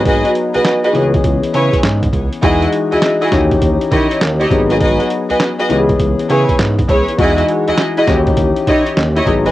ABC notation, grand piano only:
X:1
M:4/4
L:1/8
Q:"Swing 16ths" 1/4=101
K:D#phr
V:1 name="Grand piano"
[F,B,DG]3 [E,B,CG]4- [E,B,CG] | [E,G,DF]3 [E,CD=G]4 [F,B,D^G]- | [F,B,DG]3 [E,B,C=G^G]4- [E,B,C=G^G] | [E,G,DF]3 [E,CD=G]4 [F,B,D^G] |]